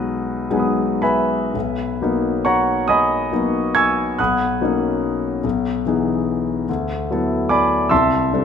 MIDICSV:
0, 0, Header, 1, 2, 480
1, 0, Start_track
1, 0, Key_signature, 5, "major"
1, 0, Tempo, 1054482
1, 704, Time_signature, 6, 3, 24, 8
1, 705, Tempo, 913242
1, 1185, Tempo, 855920
1, 2625, Tempo, 821918
1, 4620, End_track
2, 0, Start_track
2, 0, Title_t, "Grand piano"
2, 0, Program_c, 0, 0
2, 0, Control_c, 0, 64, 127
2, 0, Note_on_c, 0, 35, 53
2, 0, Note_on_c, 0, 54, 42
2, 0, Note_on_c, 0, 56, 40
2, 0, Note_on_c, 0, 59, 41
2, 0, Note_on_c, 0, 63, 43
2, 0, Note_on_c, 0, 66, 57
2, 0, Note_on_c, 0, 68, 58
2, 0, Note_on_c, 0, 71, 74
2, 211, Note_off_c, 0, 54, 0
2, 212, Note_off_c, 0, 56, 0
2, 213, Note_off_c, 0, 63, 0
2, 214, Note_off_c, 0, 59, 0
2, 230, Note_on_c, 0, 54, 33
2, 230, Note_on_c, 0, 78, 29
2, 231, Note_on_c, 0, 56, 34
2, 234, Note_on_c, 0, 59, 33
2, 234, Note_on_c, 0, 63, 35
2, 242, Note_on_c, 0, 80, 28
2, 258, Note_on_c, 0, 83, 30
2, 271, Note_on_c, 0, 87, 31
2, 457, Note_off_c, 0, 83, 0
2, 458, Note_off_c, 0, 66, 0
2, 459, Note_off_c, 0, 68, 0
2, 461, Note_off_c, 0, 80, 0
2, 463, Note_off_c, 0, 71, 0
2, 464, Note_on_c, 0, 83, 63
2, 468, Note_on_c, 0, 80, 52
2, 469, Note_on_c, 0, 76, 52
2, 470, Note_on_c, 0, 71, 50
2, 687, Note_off_c, 0, 54, 0
2, 687, Note_off_c, 0, 78, 0
2, 688, Note_off_c, 0, 56, 0
2, 689, Note_off_c, 0, 59, 0
2, 689, Note_off_c, 0, 63, 0
2, 702, Note_off_c, 0, 35, 0
2, 702, Note_on_c, 0, 35, 43
2, 708, Note_off_c, 0, 87, 0
2, 712, Control_c, 0, 64, 0
2, 805, Control_c, 0, 64, 127
2, 939, Note_off_c, 0, 35, 0
2, 950, Note_on_c, 0, 54, 39
2, 951, Note_on_c, 0, 58, 37
2, 956, Note_on_c, 0, 59, 37
2, 956, Note_on_c, 0, 63, 41
2, 1159, Note_off_c, 0, 80, 0
2, 1160, Note_off_c, 0, 71, 0
2, 1160, Note_off_c, 0, 76, 0
2, 1177, Note_on_c, 0, 85, 70
2, 1178, Note_off_c, 0, 83, 0
2, 1181, Note_on_c, 0, 73, 54
2, 1181, Note_on_c, 0, 78, 55
2, 1183, Note_on_c, 0, 82, 53
2, 1412, Note_off_c, 0, 73, 0
2, 1412, Note_off_c, 0, 78, 0
2, 1414, Note_off_c, 0, 82, 0
2, 1417, Note_on_c, 0, 87, 73
2, 1425, Note_on_c, 0, 75, 59
2, 1426, Note_on_c, 0, 80, 56
2, 1427, Note_off_c, 0, 85, 0
2, 1428, Note_on_c, 0, 83, 54
2, 1653, Note_off_c, 0, 54, 0
2, 1653, Note_off_c, 0, 58, 0
2, 1656, Note_off_c, 0, 59, 0
2, 1656, Note_off_c, 0, 63, 0
2, 1664, Note_on_c, 0, 54, 34
2, 1667, Note_on_c, 0, 58, 32
2, 1671, Note_on_c, 0, 59, 33
2, 1673, Note_on_c, 0, 63, 35
2, 1889, Note_off_c, 0, 75, 0
2, 1889, Note_off_c, 0, 80, 0
2, 1890, Note_off_c, 0, 83, 0
2, 1905, Note_on_c, 0, 92, 75
2, 1907, Note_off_c, 0, 87, 0
2, 1911, Note_on_c, 0, 80, 58
2, 1911, Note_on_c, 0, 85, 59
2, 1914, Note_on_c, 0, 88, 59
2, 2126, Note_off_c, 0, 54, 0
2, 2127, Note_off_c, 0, 58, 0
2, 2129, Note_off_c, 0, 59, 0
2, 2130, Note_off_c, 0, 63, 0
2, 2134, Note_off_c, 0, 85, 0
2, 2135, Note_off_c, 0, 80, 0
2, 2136, Note_off_c, 0, 88, 0
2, 2148, Note_off_c, 0, 92, 0
2, 2151, Note_on_c, 0, 90, 60
2, 2157, Note_on_c, 0, 78, 48
2, 2158, Note_on_c, 0, 83, 46
2, 2161, Note_on_c, 0, 87, 48
2, 2162, Control_c, 0, 64, 0
2, 2163, Note_on_c, 0, 35, 41
2, 2244, Control_c, 0, 64, 127
2, 2388, Note_off_c, 0, 35, 0
2, 2391, Note_on_c, 0, 54, 35
2, 2394, Note_on_c, 0, 58, 36
2, 2395, Note_on_c, 0, 63, 42
2, 2397, Note_on_c, 0, 61, 36
2, 2842, Note_off_c, 0, 54, 0
2, 2844, Note_off_c, 0, 58, 0
2, 2844, Note_off_c, 0, 63, 0
2, 2845, Note_off_c, 0, 61, 0
2, 2865, Note_on_c, 0, 35, 47
2, 2875, Control_c, 0, 64, 0
2, 2977, Control_c, 0, 64, 127
2, 3082, Note_off_c, 0, 78, 0
2, 3082, Note_off_c, 0, 83, 0
2, 3083, Note_off_c, 0, 87, 0
2, 3096, Note_off_c, 0, 35, 0
2, 3102, Note_off_c, 0, 90, 0
2, 3111, Note_on_c, 0, 52, 32
2, 3111, Note_on_c, 0, 59, 32
2, 3118, Note_on_c, 0, 63, 31
2, 3120, Note_on_c, 0, 68, 35
2, 3569, Note_off_c, 0, 52, 0
2, 3569, Note_off_c, 0, 59, 0
2, 3573, Note_off_c, 0, 63, 0
2, 3574, Note_off_c, 0, 68, 0
2, 3593, Note_on_c, 0, 38, 45
2, 3599, Control_c, 0, 64, 0
2, 3693, Control_c, 0, 64, 127
2, 3825, Note_off_c, 0, 38, 0
2, 3838, Note_on_c, 0, 54, 37
2, 3842, Note_on_c, 0, 59, 35
2, 3844, Note_on_c, 0, 64, 39
2, 3845, Note_on_c, 0, 69, 39
2, 4064, Note_on_c, 0, 86, 69
2, 4068, Note_on_c, 0, 80, 55
2, 4073, Note_on_c, 0, 74, 53
2, 4073, Note_on_c, 0, 83, 55
2, 4288, Note_off_c, 0, 54, 0
2, 4290, Note_off_c, 0, 59, 0
2, 4291, Note_off_c, 0, 64, 0
2, 4291, Note_off_c, 0, 80, 0
2, 4292, Note_off_c, 0, 69, 0
2, 4293, Note_off_c, 0, 74, 0
2, 4293, Note_off_c, 0, 83, 0
2, 4298, Note_on_c, 0, 88, 73
2, 4305, Note_off_c, 0, 86, 0
2, 4306, Note_on_c, 0, 76, 61
2, 4306, Note_on_c, 0, 81, 60
2, 4306, Note_on_c, 0, 84, 58
2, 4309, Note_on_c, 0, 36, 48
2, 4318, Control_c, 0, 64, 0
2, 4407, Control_c, 0, 64, 127
2, 4539, Note_off_c, 0, 36, 0
2, 4553, Note_on_c, 0, 55, 31
2, 4553, Note_on_c, 0, 60, 32
2, 4555, Note_on_c, 0, 62, 32
2, 4557, Note_on_c, 0, 69, 36
2, 4620, Note_off_c, 0, 55, 0
2, 4620, Note_off_c, 0, 60, 0
2, 4620, Note_off_c, 0, 62, 0
2, 4620, Note_off_c, 0, 69, 0
2, 4620, Note_off_c, 0, 76, 0
2, 4620, Note_off_c, 0, 81, 0
2, 4620, Note_off_c, 0, 84, 0
2, 4620, Note_off_c, 0, 88, 0
2, 4620, End_track
0, 0, End_of_file